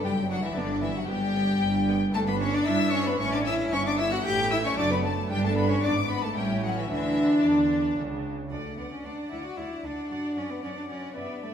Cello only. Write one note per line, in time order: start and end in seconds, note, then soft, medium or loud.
0.04 0.29 G3 medium
0.29 0.42 F#3 medium
0.43 0.55 E3 medium
0.56 0.82 D3 medium
0.82 0.88 E3 medium
0.95 1.08 F#3 medium
1.09 1.99 G3 medium
2.15 2.20 A3 loud
2.27 2.33 B3 medium
2.41 2.56 C#4 medium
2.54 2.69 D4 medium
2.67 2.93 E4 medium
2.94 3.09 C#4 medium
3.07 3.19 B3 medium
3.20 3.35 C#4 loud
3.33 3.46 D4 medium
3.47 3.74 E4 loud
3.73 3.88 C#4 loud
3.86 4.01 D4 medium
3.99 4.12 E4 loud
4.12 4.18 F#4 medium
4.25 4.51 G4 loud
4.52 4.57 E4 medium
4.65 4.79 C#4 medium
4.78 4.92 D4 medium
4.91 5.06 B3 medium
5.04 5.32 A3 medium
5.31 5.45 G3 medium
5.44 5.58 A3 medium
5.57 5.70 B3 medium
5.70 5.83 C#4 medium
5.83 5.91 D4 medium
6.10 6.25 B3 medium
6.24 6.38 A3 medium
6.37 6.63 G3 medium
6.63 6.76 F#3 medium
6.77 6.90 E3 medium
6.90 7.43 E3 medium
7.45 7.98 D3 medium
8.51 8.79 A3 soft
8.78 8.91 B3 medium
8.93 9.06 C#4 soft
9.05 9.31 D4 medium
9.31 9.44 E4 soft
9.45 9.59 F#4 medium
9.57 9.86 E4 medium
9.84 10.39 D4 medium
10.37 10.53 C#4 medium
10.52 10.63 B3 medium
10.64 10.69 C#4 medium
10.78 10.90 D4 soft
10.90 11.16 C#4 soft
11.17 11.44 B3 medium
11.43 11.54 A3 medium